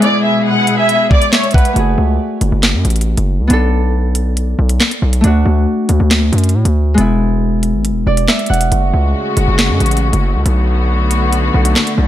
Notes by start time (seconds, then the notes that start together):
Already playing: D4 F#4
0.00 B2 G#3 B3 E4 G#4 D5, closed hi-hat
0.04 E4
0.24 E5
0.46 F#5
0.67 closed hi-hat
0.78 E5
0.89 closed hi-hat
1.11 D5, kick
1.22 closed hi-hat
1.32 C#5 E5, snare, clap
1.44 closed hi-hat
1.51 B4 F#5, kick, closed hi-hat
1.58 closed hi-hat
1.65 closed hi-hat
1.73 F#1 A3 F#4, closed hi-hat
1.79 G#4
1.98 C#2
2.41 F#1, closed hi-hat
2.52 F#1
2.63 snare, clap, closed hi-hat
2.74 F#2
2.85 A1, closed hi-hat
2.90 closed hi-hat
2.96 closed hi-hat
3.01 closed hi-hat
3.17 F#1, closed hi-hat
3.39 C#2
3.47 B1 B3 D4, closed hi-hat
3.53 A4
4.15 closed hi-hat
4.37 closed hi-hat
4.59 B1
4.69 closed hi-hat
4.80 snare, clap
4.91 closed hi-hat
5.02 B1
5.13 closed hi-hat
5.21 D2 A3 D4, closed hi-hat
5.27 F#4
5.46 D2
5.89 D2, closed hi-hat
6.00 D2
6.11 snare, clap, closed hi-hat
6.32 F#2, closed hi-hat
6.38 closed hi-hat
6.44 closed hi-hat
6.49 closed hi-hat
6.54 A2
6.65 D2, closed hi-hat
6.94 E1 G#3 B3, closed hi-hat
7.00 E4
7.63 closed hi-hat
7.74 G#1
7.85 closed hi-hat
7.90 E1
8.07 E1 D5
8.17 closed hi-hat
8.28 E5, snare, clap
8.39 closed hi-hat
8.46 E1 F#5, closed hi-hat
8.54 closed hi-hat
8.61 closed hi-hat
8.72 F#1 C#3 G#3 A3 F#4, closed hi-hat
8.94 C#2
9.37 F#1, closed hi-hat
9.48 F#1
9.59 snare, clap, closed hi-hat
9.70 F#2
9.80 A1, closed hi-hat
9.86 closed hi-hat
9.91 closed hi-hat
9.97 closed hi-hat
10.13 F#1, closed hi-hat
10.35 C#2
10.46 B1 D3 B3 F#4, closed hi-hat
11.11 closed hi-hat
11.33 closed hi-hat
11.54 B1
11.65 closed hi-hat
11.76 snare, clap
11.87 closed hi-hat
11.98 B1